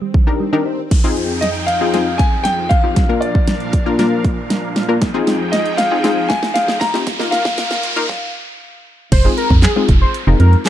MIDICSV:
0, 0, Header, 1, 11, 480
1, 0, Start_track
1, 0, Tempo, 512821
1, 856, Time_signature, 4, 2, 24, 8
1, 10007, End_track
2, 0, Start_track
2, 0, Title_t, "Grand piano"
2, 0, Program_c, 0, 0
2, 1318, Note_on_c, 0, 75, 89
2, 1374, Note_off_c, 0, 75, 0
2, 1558, Note_on_c, 0, 77, 99
2, 2040, Note_on_c, 0, 80, 100
2, 2062, Note_off_c, 0, 77, 0
2, 2270, Note_off_c, 0, 80, 0
2, 2280, Note_on_c, 0, 79, 99
2, 2520, Note_on_c, 0, 77, 111
2, 2535, Note_off_c, 0, 79, 0
2, 2974, Note_off_c, 0, 77, 0
2, 3001, Note_on_c, 0, 74, 83
2, 3931, Note_off_c, 0, 74, 0
2, 5164, Note_on_c, 0, 75, 86
2, 5404, Note_on_c, 0, 77, 99
2, 5417, Note_off_c, 0, 75, 0
2, 5882, Note_on_c, 0, 80, 96
2, 5904, Note_off_c, 0, 77, 0
2, 6121, Note_on_c, 0, 77, 98
2, 6136, Note_off_c, 0, 80, 0
2, 6361, Note_on_c, 0, 82, 112
2, 6376, Note_off_c, 0, 77, 0
2, 6814, Note_off_c, 0, 82, 0
2, 6842, Note_on_c, 0, 77, 94
2, 7771, Note_off_c, 0, 77, 0
2, 10007, End_track
3, 0, Start_track
3, 0, Title_t, "Analog synth lead"
3, 0, Program_c, 1, 81
3, 8536, Note_on_c, 1, 72, 108
3, 8693, Note_off_c, 1, 72, 0
3, 8774, Note_on_c, 1, 70, 86
3, 8933, Note_off_c, 1, 70, 0
3, 9015, Note_on_c, 1, 68, 82
3, 9094, Note_off_c, 1, 68, 0
3, 9374, Note_on_c, 1, 72, 81
3, 9453, Note_off_c, 1, 72, 0
3, 9733, Note_on_c, 1, 70, 86
3, 9892, Note_off_c, 1, 70, 0
3, 9974, Note_on_c, 1, 68, 84
3, 10007, Note_off_c, 1, 68, 0
3, 10007, End_track
4, 0, Start_track
4, 0, Title_t, "Supersaw synth"
4, 0, Program_c, 2, 81
4, 852, Note_on_c, 2, 41, 81
4, 852, Note_on_c, 2, 53, 78
4, 852, Note_on_c, 2, 63, 75
4, 852, Note_on_c, 2, 68, 73
4, 852, Note_on_c, 2, 79, 93
4, 2754, Note_off_c, 2, 41, 0
4, 2754, Note_off_c, 2, 63, 0
4, 2754, Note_off_c, 2, 79, 0
4, 2755, Note_off_c, 2, 68, 0
4, 2771, Note_on_c, 2, 62, 74
4, 2771, Note_on_c, 2, 70, 78
4, 2771, Note_on_c, 2, 77, 90
4, 2772, Note_on_c, 2, 46, 83
4, 4657, Note_off_c, 2, 53, 0
4, 4674, Note_off_c, 2, 46, 0
4, 4674, Note_off_c, 2, 62, 0
4, 4674, Note_off_c, 2, 70, 0
4, 4674, Note_off_c, 2, 77, 0
4, 4692, Note_on_c, 2, 53, 80
4, 4692, Note_on_c, 2, 79, 92
4, 4693, Note_on_c, 2, 41, 84
4, 4693, Note_on_c, 2, 63, 79
4, 4693, Note_on_c, 2, 68, 79
4, 6595, Note_off_c, 2, 41, 0
4, 6595, Note_off_c, 2, 53, 0
4, 6595, Note_off_c, 2, 63, 0
4, 6595, Note_off_c, 2, 68, 0
4, 6595, Note_off_c, 2, 79, 0
4, 6613, Note_on_c, 2, 51, 73
4, 6613, Note_on_c, 2, 65, 73
4, 6614, Note_on_c, 2, 39, 81
4, 6614, Note_on_c, 2, 58, 77
4, 6614, Note_on_c, 2, 70, 88
4, 7564, Note_off_c, 2, 51, 0
4, 7565, Note_off_c, 2, 39, 0
4, 7565, Note_off_c, 2, 58, 0
4, 7565, Note_off_c, 2, 65, 0
4, 7565, Note_off_c, 2, 70, 0
4, 10007, End_track
5, 0, Start_track
5, 0, Title_t, "Synth pluck"
5, 0, Program_c, 3, 84
5, 252, Note_on_c, 3, 62, 86
5, 254, Note_on_c, 3, 63, 77
5, 256, Note_on_c, 3, 67, 77
5, 257, Note_on_c, 3, 70, 97
5, 400, Note_off_c, 3, 62, 0
5, 401, Note_off_c, 3, 63, 0
5, 402, Note_off_c, 3, 67, 0
5, 403, Note_off_c, 3, 70, 0
5, 493, Note_on_c, 3, 62, 96
5, 494, Note_on_c, 3, 63, 90
5, 496, Note_on_c, 3, 67, 84
5, 498, Note_on_c, 3, 70, 103
5, 854, Note_off_c, 3, 62, 0
5, 855, Note_off_c, 3, 63, 0
5, 856, Note_off_c, 3, 67, 0
5, 857, Note_off_c, 3, 70, 0
5, 973, Note_on_c, 3, 60, 101
5, 974, Note_on_c, 3, 63, 96
5, 975, Note_on_c, 3, 65, 94
5, 977, Note_on_c, 3, 68, 108
5, 1414, Note_off_c, 3, 60, 0
5, 1415, Note_off_c, 3, 63, 0
5, 1415, Note_off_c, 3, 65, 0
5, 1416, Note_off_c, 3, 68, 0
5, 1693, Note_on_c, 3, 60, 79
5, 1695, Note_on_c, 3, 63, 70
5, 1696, Note_on_c, 3, 65, 72
5, 1698, Note_on_c, 3, 68, 83
5, 1768, Note_off_c, 3, 60, 0
5, 1768, Note_off_c, 3, 63, 0
5, 1769, Note_off_c, 3, 65, 0
5, 1770, Note_off_c, 3, 68, 0
5, 1813, Note_on_c, 3, 60, 82
5, 1814, Note_on_c, 3, 63, 72
5, 1817, Note_on_c, 3, 65, 75
5, 1818, Note_on_c, 3, 68, 86
5, 2328, Note_off_c, 3, 60, 0
5, 2328, Note_off_c, 3, 63, 0
5, 2330, Note_off_c, 3, 65, 0
5, 2330, Note_off_c, 3, 68, 0
5, 2654, Note_on_c, 3, 60, 71
5, 2655, Note_on_c, 3, 63, 66
5, 2657, Note_on_c, 3, 65, 68
5, 2659, Note_on_c, 3, 67, 81
5, 2775, Note_off_c, 3, 60, 0
5, 2775, Note_off_c, 3, 63, 0
5, 2776, Note_off_c, 3, 65, 0
5, 2777, Note_off_c, 3, 67, 0
5, 2893, Note_on_c, 3, 58, 86
5, 2895, Note_on_c, 3, 62, 77
5, 2896, Note_on_c, 3, 65, 81
5, 2898, Note_on_c, 3, 70, 99
5, 3334, Note_off_c, 3, 58, 0
5, 3335, Note_off_c, 3, 62, 0
5, 3336, Note_off_c, 3, 65, 0
5, 3337, Note_off_c, 3, 70, 0
5, 3612, Note_on_c, 3, 58, 93
5, 3613, Note_on_c, 3, 62, 85
5, 3615, Note_on_c, 3, 65, 87
5, 3616, Note_on_c, 3, 70, 104
5, 3687, Note_off_c, 3, 58, 0
5, 3688, Note_off_c, 3, 62, 0
5, 3689, Note_off_c, 3, 65, 0
5, 3689, Note_off_c, 3, 70, 0
5, 3733, Note_on_c, 3, 58, 96
5, 3735, Note_on_c, 3, 62, 88
5, 3737, Note_on_c, 3, 65, 90
5, 3739, Note_on_c, 3, 70, 106
5, 4248, Note_off_c, 3, 58, 0
5, 4249, Note_off_c, 3, 62, 0
5, 4250, Note_off_c, 3, 65, 0
5, 4251, Note_off_c, 3, 70, 0
5, 4573, Note_on_c, 3, 58, 91
5, 4574, Note_on_c, 3, 62, 83
5, 4576, Note_on_c, 3, 65, 78
5, 4577, Note_on_c, 3, 70, 96
5, 4694, Note_off_c, 3, 58, 0
5, 4695, Note_off_c, 3, 62, 0
5, 4696, Note_off_c, 3, 65, 0
5, 4696, Note_off_c, 3, 70, 0
5, 4813, Note_on_c, 3, 60, 106
5, 4815, Note_on_c, 3, 63, 98
5, 4816, Note_on_c, 3, 65, 100
5, 4817, Note_on_c, 3, 68, 116
5, 5255, Note_off_c, 3, 60, 0
5, 5256, Note_off_c, 3, 63, 0
5, 5256, Note_off_c, 3, 65, 0
5, 5257, Note_off_c, 3, 68, 0
5, 5534, Note_on_c, 3, 60, 82
5, 5536, Note_on_c, 3, 63, 75
5, 5536, Note_on_c, 3, 65, 76
5, 5538, Note_on_c, 3, 68, 88
5, 5608, Note_off_c, 3, 60, 0
5, 5609, Note_off_c, 3, 63, 0
5, 5609, Note_off_c, 3, 65, 0
5, 5610, Note_off_c, 3, 68, 0
5, 5651, Note_on_c, 3, 60, 83
5, 5653, Note_on_c, 3, 63, 75
5, 5655, Note_on_c, 3, 65, 77
5, 5657, Note_on_c, 3, 68, 91
5, 6167, Note_off_c, 3, 60, 0
5, 6168, Note_off_c, 3, 63, 0
5, 6169, Note_off_c, 3, 65, 0
5, 6170, Note_off_c, 3, 68, 0
5, 6492, Note_on_c, 3, 60, 76
5, 6494, Note_on_c, 3, 63, 69
5, 6496, Note_on_c, 3, 65, 70
5, 6497, Note_on_c, 3, 67, 86
5, 6614, Note_off_c, 3, 60, 0
5, 6615, Note_off_c, 3, 63, 0
5, 6616, Note_off_c, 3, 65, 0
5, 6616, Note_off_c, 3, 67, 0
5, 6734, Note_on_c, 3, 58, 87
5, 6735, Note_on_c, 3, 63, 78
5, 6736, Note_on_c, 3, 65, 84
5, 6739, Note_on_c, 3, 70, 101
5, 7175, Note_off_c, 3, 58, 0
5, 7176, Note_off_c, 3, 63, 0
5, 7176, Note_off_c, 3, 65, 0
5, 7177, Note_off_c, 3, 70, 0
5, 7453, Note_on_c, 3, 58, 98
5, 7454, Note_on_c, 3, 63, 91
5, 7456, Note_on_c, 3, 65, 92
5, 7458, Note_on_c, 3, 70, 109
5, 7528, Note_off_c, 3, 58, 0
5, 7528, Note_off_c, 3, 63, 0
5, 7529, Note_off_c, 3, 65, 0
5, 7530, Note_off_c, 3, 70, 0
5, 8655, Note_on_c, 3, 56, 75
5, 8655, Note_on_c, 3, 60, 70
5, 8657, Note_on_c, 3, 63, 69
5, 8657, Note_on_c, 3, 65, 70
5, 8658, Note_on_c, 3, 68, 86
5, 8949, Note_off_c, 3, 56, 0
5, 8949, Note_off_c, 3, 60, 0
5, 8950, Note_off_c, 3, 63, 0
5, 8950, Note_off_c, 3, 65, 0
5, 8950, Note_off_c, 3, 68, 0
5, 9135, Note_on_c, 3, 56, 82
5, 9136, Note_on_c, 3, 60, 71
5, 9138, Note_on_c, 3, 63, 71
5, 9140, Note_on_c, 3, 65, 75
5, 9140, Note_on_c, 3, 68, 87
5, 9429, Note_off_c, 3, 56, 0
5, 9429, Note_off_c, 3, 60, 0
5, 9430, Note_off_c, 3, 63, 0
5, 9431, Note_off_c, 3, 65, 0
5, 9431, Note_off_c, 3, 68, 0
5, 9614, Note_on_c, 3, 56, 76
5, 9615, Note_on_c, 3, 60, 70
5, 9616, Note_on_c, 3, 63, 70
5, 9617, Note_on_c, 3, 65, 72
5, 9619, Note_on_c, 3, 70, 83
5, 9908, Note_off_c, 3, 56, 0
5, 9909, Note_off_c, 3, 60, 0
5, 9909, Note_off_c, 3, 63, 0
5, 9910, Note_off_c, 3, 65, 0
5, 9911, Note_off_c, 3, 70, 0
5, 10007, End_track
6, 0, Start_track
6, 0, Title_t, "Synth arpeggio sound"
6, 0, Program_c, 4, 84
6, 15, Note_on_c, 4, 55, 76
6, 116, Note_off_c, 4, 55, 0
6, 135, Note_on_c, 4, 51, 77
6, 236, Note_off_c, 4, 51, 0
6, 375, Note_on_c, 4, 55, 84
6, 476, Note_off_c, 4, 55, 0
6, 495, Note_on_c, 4, 51, 67
6, 596, Note_off_c, 4, 51, 0
6, 615, Note_on_c, 4, 63, 82
6, 716, Note_off_c, 4, 63, 0
6, 10007, End_track
7, 0, Start_track
7, 0, Title_t, "FM bass"
7, 0, Program_c, 5, 39
7, 8536, Note_on_c, 5, 29, 112
7, 8681, Note_off_c, 5, 29, 0
7, 8896, Note_on_c, 5, 41, 107
7, 9041, Note_off_c, 5, 41, 0
7, 9255, Note_on_c, 5, 29, 104
7, 9400, Note_off_c, 5, 29, 0
7, 9616, Note_on_c, 5, 29, 101
7, 9688, Note_off_c, 5, 29, 0
7, 9735, Note_on_c, 5, 41, 104
7, 9881, Note_off_c, 5, 41, 0
7, 10007, End_track
8, 0, Start_track
8, 0, Title_t, "Downlifter"
8, 0, Program_c, 6, 103
8, 854, Note_on_c, 6, 60, 78
8, 4695, Note_off_c, 6, 60, 0
8, 8535, Note_on_c, 6, 60, 94
8, 10007, Note_off_c, 6, 60, 0
8, 10007, End_track
9, 0, Start_track
9, 0, Title_t, "Riser"
9, 0, Program_c, 7, 103
9, 854, Note_on_c, 7, 60, 80
9, 7575, Note_off_c, 7, 60, 0
9, 10007, End_track
10, 0, Start_track
10, 0, Title_t, "Swell"
10, 0, Program_c, 8, 103
10, 0, Note_on_c, 8, 60, 79
10, 855, Note_off_c, 8, 60, 0
10, 10007, End_track
11, 0, Start_track
11, 0, Title_t, "Drums"
11, 133, Note_on_c, 9, 36, 97
11, 227, Note_off_c, 9, 36, 0
11, 854, Note_on_c, 9, 36, 102
11, 854, Note_on_c, 9, 38, 51
11, 854, Note_on_c, 9, 42, 99
11, 854, Note_on_c, 9, 49, 92
11, 947, Note_off_c, 9, 38, 0
11, 947, Note_off_c, 9, 49, 0
11, 948, Note_off_c, 9, 36, 0
11, 948, Note_off_c, 9, 42, 0
11, 1094, Note_on_c, 9, 42, 76
11, 1187, Note_off_c, 9, 42, 0
11, 1332, Note_on_c, 9, 42, 99
11, 1333, Note_on_c, 9, 38, 59
11, 1426, Note_off_c, 9, 42, 0
11, 1427, Note_off_c, 9, 38, 0
11, 1453, Note_on_c, 9, 42, 57
11, 1546, Note_off_c, 9, 42, 0
11, 1572, Note_on_c, 9, 42, 85
11, 1666, Note_off_c, 9, 42, 0
11, 1813, Note_on_c, 9, 38, 59
11, 1813, Note_on_c, 9, 42, 81
11, 1907, Note_off_c, 9, 38, 0
11, 1907, Note_off_c, 9, 42, 0
11, 2053, Note_on_c, 9, 36, 99
11, 2053, Note_on_c, 9, 42, 74
11, 2146, Note_off_c, 9, 42, 0
11, 2147, Note_off_c, 9, 36, 0
11, 2293, Note_on_c, 9, 38, 68
11, 2294, Note_on_c, 9, 42, 103
11, 2387, Note_off_c, 9, 38, 0
11, 2387, Note_off_c, 9, 42, 0
11, 2533, Note_on_c, 9, 36, 95
11, 2533, Note_on_c, 9, 42, 68
11, 2626, Note_off_c, 9, 36, 0
11, 2627, Note_off_c, 9, 42, 0
11, 2774, Note_on_c, 9, 38, 68
11, 2774, Note_on_c, 9, 42, 99
11, 2775, Note_on_c, 9, 36, 101
11, 2867, Note_off_c, 9, 38, 0
11, 2868, Note_off_c, 9, 36, 0
11, 2868, Note_off_c, 9, 42, 0
11, 3014, Note_on_c, 9, 42, 75
11, 3108, Note_off_c, 9, 42, 0
11, 3135, Note_on_c, 9, 36, 100
11, 3229, Note_off_c, 9, 36, 0
11, 3253, Note_on_c, 9, 38, 80
11, 3253, Note_on_c, 9, 42, 93
11, 3346, Note_off_c, 9, 42, 0
11, 3347, Note_off_c, 9, 38, 0
11, 3373, Note_on_c, 9, 42, 57
11, 3466, Note_off_c, 9, 42, 0
11, 3492, Note_on_c, 9, 42, 86
11, 3494, Note_on_c, 9, 36, 92
11, 3586, Note_off_c, 9, 42, 0
11, 3588, Note_off_c, 9, 36, 0
11, 3734, Note_on_c, 9, 38, 76
11, 3734, Note_on_c, 9, 42, 84
11, 3828, Note_off_c, 9, 38, 0
11, 3828, Note_off_c, 9, 42, 0
11, 3973, Note_on_c, 9, 42, 74
11, 3974, Note_on_c, 9, 36, 105
11, 4066, Note_off_c, 9, 42, 0
11, 4067, Note_off_c, 9, 36, 0
11, 4215, Note_on_c, 9, 38, 84
11, 4215, Note_on_c, 9, 42, 105
11, 4308, Note_off_c, 9, 38, 0
11, 4309, Note_off_c, 9, 42, 0
11, 4455, Note_on_c, 9, 38, 88
11, 4456, Note_on_c, 9, 42, 70
11, 4549, Note_off_c, 9, 38, 0
11, 4549, Note_off_c, 9, 42, 0
11, 4694, Note_on_c, 9, 38, 84
11, 4695, Note_on_c, 9, 36, 108
11, 4695, Note_on_c, 9, 42, 103
11, 4788, Note_off_c, 9, 38, 0
11, 4788, Note_off_c, 9, 42, 0
11, 4789, Note_off_c, 9, 36, 0
11, 4934, Note_on_c, 9, 38, 96
11, 4934, Note_on_c, 9, 42, 82
11, 5028, Note_off_c, 9, 38, 0
11, 5028, Note_off_c, 9, 42, 0
11, 5174, Note_on_c, 9, 38, 101
11, 5174, Note_on_c, 9, 42, 99
11, 5268, Note_off_c, 9, 38, 0
11, 5268, Note_off_c, 9, 42, 0
11, 5294, Note_on_c, 9, 42, 60
11, 5388, Note_off_c, 9, 42, 0
11, 5413, Note_on_c, 9, 42, 89
11, 5414, Note_on_c, 9, 38, 96
11, 5506, Note_off_c, 9, 42, 0
11, 5508, Note_off_c, 9, 38, 0
11, 5654, Note_on_c, 9, 38, 103
11, 5654, Note_on_c, 9, 42, 87
11, 5748, Note_off_c, 9, 38, 0
11, 5748, Note_off_c, 9, 42, 0
11, 5894, Note_on_c, 9, 36, 107
11, 5894, Note_on_c, 9, 42, 74
11, 5895, Note_on_c, 9, 38, 103
11, 5988, Note_off_c, 9, 36, 0
11, 5988, Note_off_c, 9, 42, 0
11, 5989, Note_off_c, 9, 38, 0
11, 6015, Note_on_c, 9, 38, 105
11, 6109, Note_off_c, 9, 38, 0
11, 6136, Note_on_c, 9, 38, 105
11, 6136, Note_on_c, 9, 42, 106
11, 6229, Note_off_c, 9, 38, 0
11, 6230, Note_off_c, 9, 42, 0
11, 6255, Note_on_c, 9, 38, 104
11, 6349, Note_off_c, 9, 38, 0
11, 6373, Note_on_c, 9, 36, 96
11, 6375, Note_on_c, 9, 38, 107
11, 6375, Note_on_c, 9, 46, 70
11, 6467, Note_off_c, 9, 36, 0
11, 6468, Note_off_c, 9, 38, 0
11, 6469, Note_off_c, 9, 46, 0
11, 6495, Note_on_c, 9, 38, 111
11, 6588, Note_off_c, 9, 38, 0
11, 6615, Note_on_c, 9, 38, 106
11, 6615, Note_on_c, 9, 42, 109
11, 6616, Note_on_c, 9, 36, 108
11, 6708, Note_off_c, 9, 38, 0
11, 6709, Note_off_c, 9, 36, 0
11, 6709, Note_off_c, 9, 42, 0
11, 6735, Note_on_c, 9, 38, 109
11, 6828, Note_off_c, 9, 38, 0
11, 6854, Note_on_c, 9, 38, 110
11, 6854, Note_on_c, 9, 42, 84
11, 6947, Note_off_c, 9, 38, 0
11, 6948, Note_off_c, 9, 42, 0
11, 6974, Note_on_c, 9, 38, 112
11, 6976, Note_on_c, 9, 36, 100
11, 7067, Note_off_c, 9, 38, 0
11, 7069, Note_off_c, 9, 36, 0
11, 7093, Note_on_c, 9, 42, 99
11, 7094, Note_on_c, 9, 38, 118
11, 7187, Note_off_c, 9, 38, 0
11, 7187, Note_off_c, 9, 42, 0
11, 7214, Note_on_c, 9, 38, 117
11, 7214, Note_on_c, 9, 42, 59
11, 7307, Note_off_c, 9, 42, 0
11, 7308, Note_off_c, 9, 38, 0
11, 7332, Note_on_c, 9, 42, 95
11, 7426, Note_off_c, 9, 42, 0
11, 7454, Note_on_c, 9, 42, 63
11, 7548, Note_off_c, 9, 42, 0
11, 7573, Note_on_c, 9, 38, 92
11, 7574, Note_on_c, 9, 36, 111
11, 7667, Note_off_c, 9, 38, 0
11, 7668, Note_off_c, 9, 36, 0
11, 8536, Note_on_c, 9, 36, 109
11, 8536, Note_on_c, 9, 42, 108
11, 8536, Note_on_c, 9, 49, 105
11, 8629, Note_off_c, 9, 49, 0
11, 8630, Note_off_c, 9, 36, 0
11, 8630, Note_off_c, 9, 42, 0
11, 8776, Note_on_c, 9, 42, 80
11, 8870, Note_off_c, 9, 42, 0
11, 8896, Note_on_c, 9, 36, 108
11, 8990, Note_off_c, 9, 36, 0
11, 9007, Note_on_c, 9, 38, 103
11, 9013, Note_on_c, 9, 39, 127
11, 9014, Note_on_c, 9, 42, 104
11, 9101, Note_off_c, 9, 38, 0
11, 9107, Note_off_c, 9, 39, 0
11, 9107, Note_off_c, 9, 42, 0
11, 9253, Note_on_c, 9, 42, 92
11, 9255, Note_on_c, 9, 36, 101
11, 9346, Note_off_c, 9, 42, 0
11, 9348, Note_off_c, 9, 36, 0
11, 9495, Note_on_c, 9, 42, 91
11, 9588, Note_off_c, 9, 42, 0
11, 9733, Note_on_c, 9, 42, 79
11, 9827, Note_off_c, 9, 42, 0
11, 9855, Note_on_c, 9, 42, 53
11, 9949, Note_off_c, 9, 42, 0
11, 9969, Note_on_c, 9, 38, 89
11, 9974, Note_on_c, 9, 42, 113
11, 9975, Note_on_c, 9, 39, 118
11, 10007, Note_off_c, 9, 38, 0
11, 10007, Note_off_c, 9, 39, 0
11, 10007, Note_off_c, 9, 42, 0
11, 10007, End_track
0, 0, End_of_file